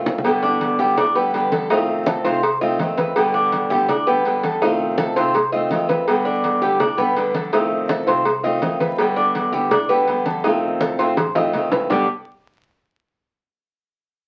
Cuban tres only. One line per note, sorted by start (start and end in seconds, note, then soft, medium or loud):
0.43 0.78 D4 medium
0.79 0.97 G4 medium
0.98 1.15 D4 medium
1.16 1.51 B4 medium
1.52 1.70 A4 medium
1.70 2.06 D#4 medium
2.07 2.24 A4 medium
2.25 2.60 C5 medium
2.61 2.97 D#5 medium
2.98 3.33 B4 medium
3.34 3.69 D4 medium
3.70 3.88 G4 medium
3.89 4.06 D4 medium
4.07 4.42 B4 medium
4.43 4.61 A4 medium
4.62 4.97 D#4 medium
4.98 5.16 A4 medium
5.16 5.52 C5 medium
5.52 5.88 D#5 medium
5.89 6.24 B4 medium
6.25 6.61 D4 medium
6.62 6.80 G4 medium
6.80 6.98 D4 medium
6.98 7.33 B4 medium
7.35 7.52 A4 medium
7.53 7.88 D#4 medium
7.89 8.07 A4 medium
8.08 8.43 C5 medium
8.44 8.79 D#5 medium
8.80 9.16 B4 medium
9.16 9.52 D4 medium
9.53 9.71 G4 medium
9.71 9.89 D4 medium
9.89 10.25 B4 medium
10.25 10.43 A4 medium
10.44 10.80 D#4 medium
10.81 10.99 A4 medium
10.99 11.35 C5 medium
11.36 11.71 D#5 medium
11.72 11.90 B4 medium
11.90 12.07 G3 medium
11.90 12.07 D4 medium
11.90 12.08 G4 medium